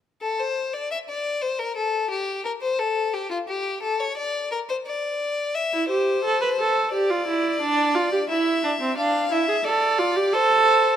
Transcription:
<<
  \new Staff \with { instrumentName = "Violin" } { \time 4/4 \key a \phrygian \tempo 4 = 88 r16 a'16 c''8 d''16 e''16 d''8 c''16 bes'16 a'8 g'8 bes'16 c''16 | a'8 g'16 f'16 g'8 a'16 cis''16 d''8 bes'16 c''16 d''4 | e''8 c''4. d''2 | e''4 f''8 e''8 d''4 c''4 | }
  \new Staff \with { instrumentName = "Viola" } { \time 4/4 \key a \phrygian r1 | r1 | r16 e'16 g'8 a'16 b'16 a'8 g'16 f'16 e'8 d'8 f'16 g'16 | e'8 d'16 c'16 d'8 e'16 gis'16 a'8 f'16 g'16 a'4 | }
>>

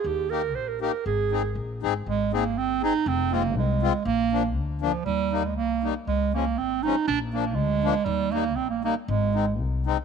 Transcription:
<<
  \new Staff \with { instrumentName = "Accordion" } { \time 2/4 \key aes \major \tempo 4 = 120 r8 <bes ees' g'>8 r8 <bes ees' g'>8 | r8 <c' ees' aes'>8 r8 <c' ees' aes'>8 | r8 <c' ees' aes'>8 r8 <c' ees' aes'>8 | r8 <aes c' f'>8 r8 <aes c' f'>8 |
r8 <f bes d'>8 r8 <f bes d'>8 | r8 <g bes ees'>8 r8 <g bes ees'>8 | r8 <f aes des'>8 r8 <f aes des'>8 | r8 <f bes d'>8 r8 <f bes d'>8 |
r8 <g bes ees'>8 r8 <g bes ees'>8 | r8 <aes c' ees'>8 r8 <aes c' ees'>8 | }
  \new Staff \with { instrumentName = "Clarinet" } { \time 2/4 \key aes \major g'8 bes'8 c''16 bes'16 bes'8 | aes'4 r4 | aes8 bes8 c'8 ees'8 | c'8 bes8 aes4 |
bes4 r8 f8 | g8. aes16 bes8. r16 | aes8 bes8 c'8 ees'8 | d'8 bes8 aes4 |
g8 bes8 c'16 bes16 bes8 | aes4 r4 | }
  \new Staff \with { instrumentName = "Upright bass" } { \clef bass \time 2/4 \key aes \major ees,4 bes,,4 | aes,,4 bes,,8 aes,,8 | aes,,4 g,,4 | f,,4 c,4 |
bes,,4 d,4 | ees,4 c,4 | des,4 aes,,4 | bes,,4 d,4 |
ees,4 bes,,4 | aes,,4 c,4 | }
>>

